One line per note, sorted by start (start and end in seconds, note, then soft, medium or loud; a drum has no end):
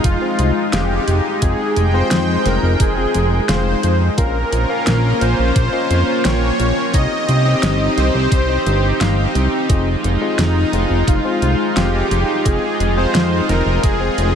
0.00 4.14 G#3 medium
0.00 4.14 D#4 medium
0.00 1.40 F4 medium
0.04 0.17 F1 medium
0.04 0.75 F4 loud
0.04 kick loud
0.04 closed hi-hat loud
0.22 0.51 C4 medium
0.22 0.51 F4 medium
0.22 0.51 G#4 medium
0.22 0.51 C5 loud
0.39 0.52 C2 medium
0.39 closed hi-hat medium
0.73 1.00 F1 medium
0.73 1.02 C4 loud
0.73 1.02 F4 medium
0.73 1.44 G4 loud
0.73 1.02 G#4 medium
0.73 1.02 F5 loud
0.73 snare loud
0.73 closed hi-hat loud
1.08 1.21 F1 medium
1.08 closed hi-hat medium
1.42 1.55 F1 medium
1.42 1.60 C4 medium
1.42 1.60 F4 medium
1.42 1.95 G#4 loud
1.42 1.60 G#4 medium
1.42 1.60 D#5 loud
1.42 4.15 G5 medium
1.42 kick loud
1.42 closed hi-hat loud
1.76 2.03 F1 medium
1.76 closed hi-hat medium
1.94 2.42 C4 loud
1.94 2.41 F4 medium
1.94 2.42 G#4 medium
1.94 2.47 C5 loud
1.94 2.42 D#5 loud
2.11 2.38 F2 medium
2.11 snare loud
2.11 closed hi-hat loud
2.46 2.59 F1 medium
2.46 2.75 C4 medium
2.46 2.75 F4 medium
2.46 2.75 G#4 medium
2.46 2.81 A#4 medium
2.46 2.75 D#5 medium
2.46 snare soft
2.46 closed hi-hat medium
2.63 2.76 F1 loud
2.80 3.06 F1 medium
2.80 3.45 G#4 loud
2.80 kick loud
2.80 closed hi-hat loud
2.97 3.26 C4 medium
2.97 3.26 F4 medium
2.97 3.26 G#4 medium
2.97 3.26 C5 loud
3.14 3.41 F1 loud
3.14 closed hi-hat medium
3.49 3.75 F1 medium
3.49 3.78 C4 loud
3.49 3.78 F4 medium
3.49 3.78 G#4 medium
3.49 3.97 C5 loud
3.49 3.78 F5 loud
3.49 snare loud
3.49 closed hi-hat loud
3.83 4.10 F2 medium
3.83 closed hi-hat medium
4.18 4.44 A#1 loud
4.18 6.91 A#3 medium
4.18 4.36 C#4 loud
4.18 6.91 C#4 medium
4.18 4.36 F4 medium
4.18 6.91 F4 medium
4.18 4.36 A#4 medium
4.18 5.25 A#4 loud
4.18 4.36 F5 loud
4.18 kick loud
4.18 closed hi-hat loud
4.52 4.66 A#1 loud
4.52 closed hi-hat medium
4.69 5.17 C#4 loud
4.69 5.17 F4 medium
4.69 5.17 A#4 medium
4.69 5.17 F5 loud
4.87 5.13 A#1 loud
4.87 snare loud
4.87 closed hi-hat loud
5.21 5.35 A#1 loud
5.21 5.50 C#4 medium
5.21 5.50 F4 medium
5.21 5.50 A#4 medium
5.21 6.28 C5 loud
5.21 5.50 F5 medium
5.21 closed hi-hat medium
5.39 5.52 A#1 medium
5.56 5.69 A#1 medium
5.56 kick loud
5.56 closed hi-hat medium
5.73 6.02 C#4 medium
5.73 6.02 F4 medium
5.73 6.02 A#4 medium
5.73 6.02 D#5 loud
5.90 6.04 F2 medium
5.90 closed hi-hat medium
6.25 6.51 A#1 medium
6.25 6.54 C#4 loud
6.25 6.54 F4 medium
6.25 6.54 A#4 medium
6.25 6.96 C#5 loud
6.25 6.54 G5 loud
6.25 snare loud
6.25 closed hi-hat loud
6.60 6.73 A#1 medium
6.60 closed hi-hat medium
6.94 7.07 C2 medium
6.94 7.12 C4 medium
6.94 9.67 C4 medium
6.94 7.12 D#4 medium
6.94 14.35 D#4 medium
6.94 7.12 G4 medium
6.94 9.67 G4 medium
6.94 7.12 D#5 loud
6.94 8.00 D#5 loud
6.94 kick loud
6.94 closed hi-hat medium
7.29 7.55 C2 medium
7.29 closed hi-hat medium
7.45 7.93 C4 loud
7.45 7.93 D#4 medium
7.45 7.93 G4 medium
7.45 7.93 D#5 loud
7.63 7.89 G1 medium
7.63 snare loud
7.63 closed hi-hat medium
7.97 8.11 C2 medium
7.97 8.26 C4 medium
7.97 8.26 D#4 medium
7.97 8.26 G4 medium
7.97 9.31 C5 loud
7.97 8.26 D#5 medium
7.97 snare soft
7.97 closed hi-hat medium
8.14 8.28 C2 loud
8.32 8.58 C2 medium
8.32 kick loud
8.32 closed hi-hat medium
8.49 8.78 C4 medium
8.49 8.78 D#4 medium
8.49 8.78 G4 medium
8.49 8.78 C5 loud
8.66 8.93 G1 loud
8.66 closed hi-hat medium
9.01 9.27 G1 medium
9.01 9.30 C4 loud
9.01 9.30 D#4 medium
9.01 9.30 G4 medium
9.01 9.30 F5 loud
9.01 snare loud
9.01 closed hi-hat medium
9.35 9.48 C2 loud
9.35 closed hi-hat medium
9.70 9.96 F1 loud
9.70 14.35 G#3 medium
9.70 9.88 C4 medium
9.70 9.88 F4 medium
9.70 14.35 F4 medium
9.70 9.88 G#4 medium
9.70 9.88 D#5 loud
9.70 kick loud
9.70 closed hi-hat medium
10.04 10.17 F1 medium
10.04 closed hi-hat medium
10.21 10.69 C4 medium
10.21 10.69 F4 medium
10.21 10.69 G#4 medium
10.21 10.69 D#5 loud
10.38 10.65 F1 loud
10.38 11.10 D#4 medium
10.38 snare loud
10.38 closed hi-hat medium
10.73 10.86 F1 loud
10.73 11.02 C4 medium
10.73 11.02 F4 medium
10.73 11.02 G#4 medium
10.73 11.02 D#5 medium
10.73 closed hi-hat medium
10.90 11.03 F1 medium
11.08 11.21 F1 medium
11.08 11.79 F4 loud
11.08 kick loud
11.08 closed hi-hat medium
11.25 11.54 C4 medium
11.25 11.54 F4 medium
11.25 11.54 G#4 medium
11.25 11.54 C5 medium
11.42 11.55 C2 medium
11.42 closed hi-hat medium
11.76 12.03 F1 medium
11.76 12.06 C4 loud
11.76 12.06 F4 medium
11.76 12.48 G4 loud
11.76 12.06 G#4 medium
11.76 12.06 F5 loud
11.76 snare loud
11.76 closed hi-hat medium
12.11 12.24 F1 medium
12.11 closed hi-hat medium
12.46 12.59 F1 medium
12.46 12.64 C4 medium
12.46 12.64 F4 medium
12.46 12.64 G#4 medium
12.46 12.99 G#4 loud
12.46 12.64 D#5 loud
12.46 kick loud
12.46 closed hi-hat medium
12.80 13.06 F1 medium
12.80 closed hi-hat medium
12.97 13.45 C4 medium
12.97 13.45 F4 medium
12.97 13.45 G#4 medium
12.97 13.45 C5 loud
12.97 13.45 D#5 loud
13.15 13.41 F2 medium
13.15 snare loud
13.15 closed hi-hat medium
13.49 13.62 F1 medium
13.49 13.78 C4 medium
13.49 13.78 F4 medium
13.49 13.78 G#4 medium
13.49 13.85 A#4 loud
13.49 13.78 D#5 medium
13.49 snare soft
13.49 closed hi-hat medium
13.66 13.79 F1 medium
13.83 14.10 F1 medium
13.83 14.35 G#4 loud
13.83 kick loud
13.83 closed hi-hat medium
14.01 14.30 C4 medium
14.01 14.30 F4 medium
14.01 14.30 G#4 medium
14.01 14.30 C5 loud
14.18 14.35 F1 loud
14.18 closed hi-hat medium